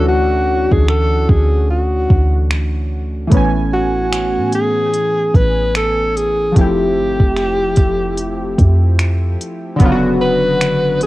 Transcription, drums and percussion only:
0.72 kick medium
0.88 finger snap loud
1.29 kick loud
2.10 kick loud
2.51 finger snap loud
3.32 kick loud
3.32 closed hi-hat medium
4.13 finger snap loud
4.13 closed hi-hat medium
4.52 closed hi-hat medium
4.94 closed hi-hat medium
5.34 kick loud
5.34 closed hi-hat medium
5.75 finger snap loud
5.75 closed hi-hat medium
6.17 closed hi-hat medium
6.56 kick loud
6.56 closed hi-hat medium
7.20 kick medium
7.37 finger snap loud
7.37 closed hi-hat medium
7.76 kick loud
7.76 closed hi-hat medium
8.18 closed hi-hat medium
8.58 kick loud
8.58 closed hi-hat medium
8.99 finger snap loud
8.99 closed hi-hat medium
9.41 closed hi-hat medium
9.80 kick loud
9.80 closed hi-hat medium
10.61 finger snap loud
10.61 closed hi-hat medium
11.01 closed hi-hat medium

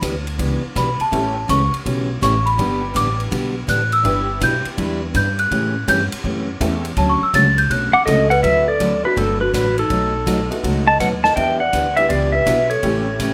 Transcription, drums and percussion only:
0.02 kick soft
0.02 hi-hat pedal medium
0.02 ride medium
0.27 ride soft
0.39 kick soft
0.39 ride medium
0.76 kick soft
0.76 hi-hat pedal medium
0.76 ride medium
1.00 ride soft
1.12 kick soft
1.12 ride medium
1.49 kick soft
1.49 hi-hat pedal medium
1.49 ride medium
1.74 ride soft
1.86 kick soft
1.86 ride medium
2.22 kick soft
2.22 hi-hat pedal medium
2.22 ride medium
2.47 ride soft
2.59 kick soft
2.59 ride medium
2.95 kick soft
2.95 hi-hat pedal medium
2.95 ride medium
3.20 ride soft
3.32 kick soft
3.32 ride medium
3.68 kick soft
3.68 hi-hat pedal medium
3.68 ride medium
3.92 ride soft
4.05 kick soft
4.05 ride medium
4.41 kick soft
4.41 hi-hat pedal medium
4.41 ride medium
4.65 ride soft
4.78 kick soft
4.78 ride medium
5.14 kick soft
5.14 hi-hat pedal medium
5.14 ride medium
5.39 ride soft
5.51 kick soft
5.51 ride medium
5.88 kick soft
5.88 hi-hat pedal medium
5.88 ride medium
6.12 ride medium
6.24 kick soft
6.61 kick soft
6.61 hi-hat pedal medium
6.61 ride medium
6.85 ride medium
6.96 kick soft
6.96 ride medium
7.34 kick soft
7.34 hi-hat pedal medium
7.34 ride medium
7.58 ride medium
7.70 kick soft
7.70 ride medium
8.07 kick soft
8.07 hi-hat pedal medium
8.07 ride medium
8.31 ride soft
8.44 kick soft
8.44 ride medium
8.80 kick soft
8.80 hi-hat pedal medium
8.80 ride medium
9.17 kick soft
9.17 ride medium
9.54 kick soft
9.54 hi-hat pedal medium
9.54 ride medium
9.78 ride soft
9.90 kick soft
9.90 ride medium
10.27 kick soft
10.27 hi-hat pedal medium
10.27 ride medium
10.52 ride soft
10.64 kick soft
10.64 ride medium
11.00 kick soft
11.00 hi-hat pedal medium
11.00 ride medium
11.24 snare soft
11.37 kick soft
11.37 ride medium
11.73 kick soft
11.73 hi-hat pedal medium
11.73 ride medium
11.97 ride soft
12.10 kick soft
12.10 ride medium
12.47 kick soft
12.47 hi-hat pedal medium
12.47 ride medium
12.70 ride soft
12.83 kick soft
12.83 ride medium
13.20 kick soft
13.20 hi-hat pedal medium
13.20 ride medium

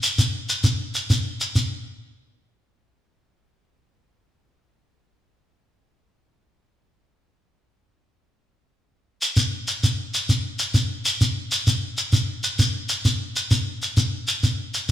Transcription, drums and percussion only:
0.03 shekere medium
0.18 shekere medium
0.49 shekere medium
0.64 shekere medium
0.95 shekere medium
1.10 shekere medium
1.41 shekere medium
1.55 shekere medium
9.22 shekere medium
9.37 shekere medium
9.68 shekere medium
9.83 shekere medium
10.14 shekere medium
10.29 shekere medium
10.59 shekere medium
10.74 shekere medium
11.05 shekere medium
11.21 shekere medium
11.52 shekere medium
11.67 shekere medium
11.97 shekere medium
12.13 shekere medium
12.43 shekere medium
12.59 shekere medium
12.89 shekere medium
13.05 shekere medium
13.36 shekere medium
13.51 shekere medium
13.82 shekere medium
13.97 shekere medium
14.28 shekere medium
14.43 shekere medium
14.74 shekere soft

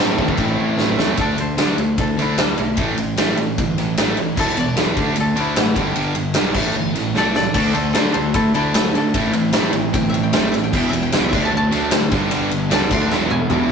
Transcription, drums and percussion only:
0.09 snare soft
0.18 kick medium
0.28 kick medium
0.37 kick medium
0.37 crash medium
0.79 snare medium
0.99 snare loud
1.17 kick loud
1.17 ride medium
1.38 ride medium
1.58 snare loud
1.58 ride medium
1.78 ride medium
1.98 kick loud
1.98 ride medium
2.19 ride medium
2.38 snare loud
2.38 ride loud
2.58 ride medium
2.77 kick loud
2.77 ride medium
2.98 ride medium
3.17 snare loud
3.17 ride medium
3.37 ride medium
3.58 kick loud
3.58 ride medium
3.78 snare soft
3.78 ride medium
3.97 snare loud
3.97 ride loud
4.17 ride medium
4.37 kick loud
4.37 crash medium
4.57 ride medium
4.77 snare loud
4.77 ride medium
4.97 kick loud
4.97 ride medium
5.16 ride medium
5.37 ride medium
5.56 snare loud
5.56 ride loud
5.76 kick medium
5.76 ride medium
5.95 ride medium
6.15 ride medium
6.34 snare loud
6.34 ride medium
6.54 kick medium
6.54 crash medium
6.95 snare soft
6.95 ride medium
7.15 snare medium
7.35 snare medium
7.54 kick loud
7.54 crash medium
7.75 ride medium
7.95 snare loud
7.95 ride loud
8.14 ride medium
8.34 kick loud
8.34 ride medium
8.55 ride medium
8.74 snare loud
8.74 ride loud
8.95 snare soft
8.95 ride medium
9.14 kick loud
9.14 ride loud
9.33 ride medium
9.53 snare loud
9.53 ride loud
9.73 ride medium
9.94 kick loud
9.94 ride medium
10.14 ride medium
10.33 snare loud
10.33 ride loud
10.54 snare soft
10.54 ride medium
10.73 kick loud
10.73 crash medium
10.93 ride medium
11.12 snare loud
11.12 ride loud
11.33 kick loud
11.33 crash medium
11.72 snare soft
11.72 ride medium
11.91 snare loud
11.91 ride loud
12.11 kick loud
12.11 snare soft
12.11 ride medium
12.31 ride loud
12.51 ride medium
12.71 snare loud
12.71 ride loud
12.90 kick loud
12.90 crash loud
13.12 snare medium
13.30 high tom medium
13.50 mid tom loud

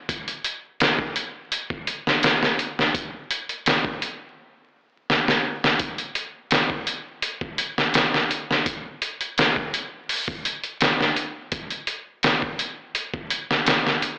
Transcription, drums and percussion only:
0.09 kick loud
0.09 closed hi-hat medium
0.28 closed hi-hat soft
0.44 closed hi-hat medium
0.80 snare loud
0.80 closed hi-hat medium
0.99 kick medium
1.16 closed hi-hat medium
1.52 closed hi-hat medium
1.70 kick medium
1.87 closed hi-hat medium
2.07 snare soft
2.23 snare loud
2.23 closed hi-hat medium
2.43 snare soft
2.59 closed hi-hat medium
2.79 snare soft
2.95 kick loud
2.95 closed hi-hat medium
3.31 closed hi-hat medium
3.49 closed hi-hat soft
3.66 snare loud
3.66 closed hi-hat medium
3.85 kick medium
4.02 closed hi-hat medium
5.10 snare medium
5.28 snare medium
5.64 snare medium
5.79 kick loud
5.79 closed hi-hat medium
5.98 closed hi-hat soft
6.15 closed hi-hat medium
6.51 snare loud
6.51 closed hi-hat medium
6.70 kick medium
6.87 closed hi-hat medium
7.22 closed hi-hat medium
7.41 kick medium
7.58 closed hi-hat medium
7.78 snare soft
7.94 snare loud
7.94 closed hi-hat medium
8.14 snare medium
8.31 closed hi-hat medium
8.51 snare soft
8.66 kick loud
8.66 closed hi-hat medium
9.02 closed hi-hat medium
9.21 closed hi-hat soft
9.38 snare loud
9.38 closed hi-hat medium
9.56 kick medium
9.74 closed hi-hat medium
10.09 open hi-hat medium
10.28 kick medium
10.45 closed hi-hat medium
10.63 closed hi-hat soft
10.81 snare loud
10.81 closed hi-hat medium
11.01 snare soft
11.16 closed hi-hat medium
11.52 kick loud
11.52 closed hi-hat medium
11.70 closed hi-hat soft
11.87 closed hi-hat medium
12.23 snare loud
12.23 closed hi-hat medium
12.42 kick medium
12.59 closed hi-hat medium
12.95 closed hi-hat medium
13.14 kick medium
13.30 closed hi-hat medium
13.51 snare soft
13.66 snare loud
13.66 closed hi-hat medium
13.87 snare soft
14.02 closed hi-hat medium

